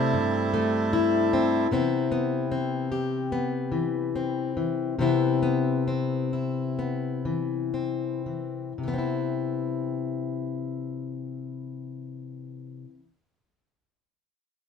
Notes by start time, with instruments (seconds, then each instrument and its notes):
Already playing: steel-string acoustic guitar C3 A3 C4, accordion C3 G3 E4 A4, resonator guitar played with a steel bar C5
0.14 steel-string acoustic guitar G2
0.54 steel-string acoustic guitar A3
0.93 steel-string acoustic guitar E4
1.33 steel-string acoustic guitar C4
1.71 steel-string acoustic guitar C3 E3 B3 C4 E4
2.12 steel-string acoustic guitar B3
2.52 steel-string acoustic guitar C4
2.92 steel-string acoustic guitar G4
3.32 steel-string acoustic guitar B3
3.72 steel-string acoustic guitar E3
4.16 steel-string acoustic guitar C4
4.57 steel-string acoustic guitar E3
4.99 steel-string acoustic guitar C3 E3 B3 C4 E4
5.43 steel-string acoustic guitar B3
5.88 steel-string acoustic guitar C4
6.33 steel-string acoustic guitar E4
6.79 steel-string acoustic guitar B3
7.25 steel-string acoustic guitar E3
7.74 steel-string acoustic guitar C4
8.26 steel-string acoustic guitar E3
8.78 steel-string acoustic guitar C3
8.83 steel-string acoustic guitar E3
8.88 steel-string acoustic guitar B3
8.94 steel-string acoustic guitar C4
8.98 steel-string acoustic guitar E4